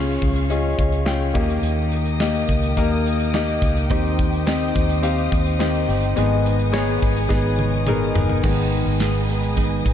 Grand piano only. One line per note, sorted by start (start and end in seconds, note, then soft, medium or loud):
0.00 0.18 C#3 medium
0.00 0.50 C#4 medium
0.00 0.50 F4 medium
0.00 0.51 G#4 medium
0.00 1.37 F5 medium
0.50 0.95 C#4 medium
0.50 0.95 F4 medium
0.50 0.96 G#4 medium
0.50 0.96 D#5 medium
1.05 1.35 C#4 medium
1.05 1.35 F4 medium
1.05 1.35 G#4 medium
1.05 1.35 G5 medium
1.34 2.16 D#3 medium
1.34 2.03 A#3 medium
1.34 2.03 D#4 medium
1.34 2.03 G4 medium
1.34 2.03 D#5 medium
2.20 2.65 A#3 medium
2.20 2.65 D#4 medium
2.20 2.65 G4 medium
2.20 2.66 D#5 medium
2.77 3.22 A#3 medium
2.77 3.22 D#4 medium
2.77 3.22 G4 medium
2.77 3.23 A#4 medium
3.34 3.79 A#3 medium
3.34 3.79 D#4 medium
3.34 3.79 G4 medium
3.34 3.79 D#5 medium
3.90 4.72 D#3 medium
3.90 4.35 C4 medium
3.90 4.35 D#4 medium
3.90 4.35 G4 medium
3.90 4.36 D#5 loud
4.46 4.92 C4 medium
4.46 4.92 D#4 medium
4.46 4.92 G4 medium
4.46 4.92 D#5 medium
5.02 5.48 C4 medium
5.02 5.48 D#4 medium
5.02 5.48 G4 medium
5.02 5.49 F5 loud
5.59 6.05 C4 medium
5.59 6.05 D#4 medium
5.59 6.05 G4 medium
5.59 6.05 D#5 medium
6.16 6.98 G#2 medium
6.16 6.62 B3 medium
6.16 6.62 D#4 medium
6.16 6.62 G#4 medium
6.16 6.62 D#5 loud
6.72 7.18 B3 medium
6.72 7.19 D#4 medium
6.72 7.18 G#4 medium
6.72 7.19 C#5 medium
7.29 7.75 B3 medium
7.29 7.75 D#4 medium
7.29 7.75 G#4 medium
7.29 7.75 D#5 loud
7.87 8.32 B3 medium
7.87 8.32 D#4 medium
7.87 8.33 G#4 medium
7.87 8.33 A#4 medium
8.43 9.25 D#3 medium
8.43 9.25 G#3 soft
8.43 9.26 B3 medium